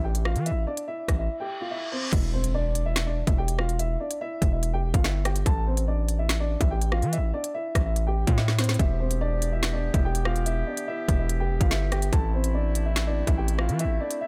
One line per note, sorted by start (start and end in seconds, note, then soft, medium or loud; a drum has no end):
0.00 0.37 A1 loud
0.04 0.21 G4 medium
0.04 0.21 G5 medium
0.15 closed hi-hat medium
0.25 0.42 F4 medium
0.25 0.42 F5 medium
0.25 cross-stick loud
0.36 0.53 E3 loud
0.36 closed hi-hat soft
0.46 0.63 E4 medium
0.46 0.63 E5 medium
0.46 closed hi-hat medium
0.51 0.66 A1 loud
0.67 0.84 D4 medium
0.67 0.83 D5 medium
0.77 closed hi-hat medium
0.88 1.17 E4 medium
0.88 1.17 E5 medium
1.08 1.29 A1 loud
1.08 kick medium
1.08 cross-stick loud
1.08 closed hi-hat medium
1.19 1.36 E4 medium
1.19 1.35 E5 medium
1.29 reverse cymbal medium
1.40 1.57 G4 medium
1.40 1.56 G5 medium
1.61 1.69 F4 medium
1.61 1.69 F5 medium
1.71 1.88 E4 medium
1.71 1.88 E5 medium
1.92 2.09 C4 medium
1.92 2.09 C5 medium
2.13 3.23 E1 loud
2.13 2.30 E4 medium
2.13 2.29 E5 medium
2.13 kick loud
2.13 closed hi-hat medium
2.13 crash loud
2.13 impact medium
2.33 2.51 C4 medium
2.33 2.50 C5 medium
2.44 closed hi-hat medium
2.54 2.84 D4 medium
2.54 2.84 D5 loud
2.75 closed hi-hat medium
2.86 3.03 E4 medium
2.86 3.02 E5 medium
2.96 finger snap loud
2.96 snare loud
2.96 closed hi-hat medium
3.06 3.23 D4 medium
3.06 3.23 D5 medium
3.27 3.97 E1 loud
3.27 3.36 E4 medium
3.27 3.36 E5 medium
3.27 kick loud
3.27 closed hi-hat medium
3.38 3.55 G4 medium
3.38 3.54 G5 medium
3.48 closed hi-hat medium
3.59 3.76 F4 medium
3.59 3.75 F5 medium
3.59 cross-stick loud
3.69 closed hi-hat soft
3.79 3.96 E4 medium
3.79 3.96 E5 medium
3.79 closed hi-hat medium
4.00 4.17 D4 medium
4.00 4.17 D5 medium
4.11 closed hi-hat medium
4.21 4.51 E4 medium
4.21 4.50 E5 loud
4.42 4.75 E1 loud
4.42 kick medium
4.42 closed hi-hat medium
4.52 4.69 E4 medium
4.52 4.69 E5 medium
4.63 closed hi-hat medium
4.73 4.85 F1 loud
4.73 4.90 G4 medium
4.73 4.90 G5 medium
4.83 4.93 E1 loud
4.94 5.44 G1 loud
4.94 5.02 F4 medium
4.94 5.02 F5 medium
4.94 kick loud
4.94 closed hi-hat medium
5.04 5.21 E4 medium
5.04 5.21 E5 medium
5.04 finger snap loud
5.04 snare loud
5.25 5.42 G4 medium
5.25 5.42 G5 medium
5.25 cross-stick loud
5.25 closed hi-hat medium
5.36 closed hi-hat medium
5.46 6.57 A1 loud
5.46 5.63 A4 medium
5.46 5.63 A5 medium
5.46 kick loud
5.46 closed hi-hat medium
5.67 5.84 C4 medium
5.67 5.84 C5 medium
5.77 closed hi-hat medium
5.88 6.18 D4 medium
5.88 6.17 D5 medium
6.09 closed hi-hat medium
6.19 6.36 E4 medium
6.19 6.35 E5 medium
6.29 finger snap loud
6.29 snare loud
6.29 closed hi-hat medium
6.40 6.57 D4 medium
6.40 6.57 D5 medium
6.61 7.04 A1 loud
6.61 6.69 E4 medium
6.61 6.69 E5 medium
6.61 kick loud
6.61 closed hi-hat medium
6.71 6.88 G4 medium
6.71 6.87 G5 medium
6.82 closed hi-hat medium
6.92 7.09 F4 medium
6.92 7.08 F5 medium
6.92 cross-stick loud
7.02 7.19 E3 loud
7.02 closed hi-hat soft
7.13 7.30 E4 medium
7.13 7.29 E5 medium
7.13 closed hi-hat medium
7.18 7.33 A1 loud
7.34 7.51 D4 medium
7.34 7.50 D5 medium
7.44 closed hi-hat medium
7.54 7.84 E4 medium
7.54 7.84 E5 medium
7.75 8.25 A1 loud
7.75 kick medium
7.75 cross-stick loud
7.75 closed hi-hat medium
7.86 8.03 E4 medium
7.86 8.02 E5 medium
7.96 closed hi-hat medium
8.07 8.24 G4 medium
8.07 8.23 G5 medium
8.27 8.77 A2 loud
8.27 8.36 F4 medium
8.27 8.36 F5 medium
8.27 kick medium
8.27 closed hi-hat medium
8.38 8.55 E4 medium
8.38 8.54 E5 medium
8.38 snare medium
8.48 snare medium
8.59 8.76 C4 medium
8.59 8.75 C5 medium
8.59 snare loud
8.59 closed hi-hat medium
8.64 closed hi-hat medium
8.69 snare loud
8.69 closed hi-hat medium
8.74 closed hi-hat medium
8.79 9.90 E1 loud
8.79 12.09 E3 medium
8.79 12.09 B3 medium
8.79 8.96 E4 medium
8.79 12.09 G4 medium
8.79 8.96 E5 medium
8.79 kick loud
8.79 closed hi-hat medium
9.00 9.17 C4 medium
9.00 9.17 C5 medium
9.11 closed hi-hat medium
9.21 9.51 D4 medium
9.21 9.50 D5 loud
9.42 closed hi-hat medium
9.52 9.69 E4 medium
9.52 9.69 E5 medium
9.63 finger snap loud
9.63 snare loud
9.63 closed hi-hat medium
9.73 9.90 D4 medium
9.73 9.90 D5 medium
9.94 10.64 E1 loud
9.94 10.03 E4 medium
9.94 10.02 E5 medium
9.94 kick medium
9.94 closed hi-hat medium
10.05 10.22 G4 medium
10.05 10.21 G5 medium
10.15 closed hi-hat medium
10.25 10.43 F4 medium
10.25 10.42 F5 medium
10.25 cross-stick loud
10.36 closed hi-hat soft
10.46 10.63 E4 medium
10.46 10.62 E5 medium
10.46 closed hi-hat medium
10.67 10.84 D4 medium
10.67 10.83 D5 medium
10.77 closed hi-hat medium
10.88 11.18 E4 medium
10.88 11.17 E5 medium
11.08 11.41 E1 loud
11.08 kick medium
11.08 closed hi-hat medium
11.19 11.36 E4 medium
11.19 11.36 E5 medium
11.29 closed hi-hat medium
11.40 11.52 F1 loud
11.40 11.57 G4 medium
11.40 11.56 G5 medium
11.50 11.60 E1 loud
11.60 12.11 G1 loud
11.60 11.69 F4 medium
11.60 11.69 F5 medium
11.60 kick medium
11.60 closed hi-hat medium
11.71 11.88 E4 medium
11.71 11.88 E5 medium
11.71 finger snap medium
11.71 snare loud
11.92 12.09 G4 medium
11.92 12.09 G5 medium
11.92 cross-stick loud
11.92 closed hi-hat medium
12.02 closed hi-hat medium
12.13 13.23 A1 loud
12.13 14.27 A3 medium
12.13 14.27 C4 medium
12.13 14.27 E4 medium
12.13 12.30 A4 medium
12.13 12.29 A5 medium
12.13 kick loud
12.13 closed hi-hat medium
12.34 12.51 C4 medium
12.34 12.50 C5 medium
12.44 closed hi-hat medium
12.54 12.84 D4 medium
12.54 12.84 D5 medium
12.75 closed hi-hat medium
12.86 13.03 E4 medium
12.86 13.02 E5 medium
12.96 finger snap loud
12.96 snare loud
12.96 closed hi-hat medium
13.07 13.24 D4 medium
13.07 13.23 D5 medium
13.27 13.71 A1 loud
13.27 13.36 E4 medium
13.27 13.36 E5 medium
13.27 kick medium
13.27 closed hi-hat medium
13.38 13.55 G4 medium
13.38 13.54 G5 medium
13.48 closed hi-hat medium
13.59 13.76 F4 medium
13.59 13.75 F5 medium
13.59 cross-stick loud
13.69 13.86 E3 loud
13.69 closed hi-hat soft
13.79 13.97 E4 medium
13.79 13.96 E5 loud
13.79 closed hi-hat medium
13.85 13.99 A1 loud
14.00 14.17 D4 medium
14.00 14.17 D5 medium
14.11 closed hi-hat medium
14.21 14.27 E4 medium
14.21 14.27 E5 medium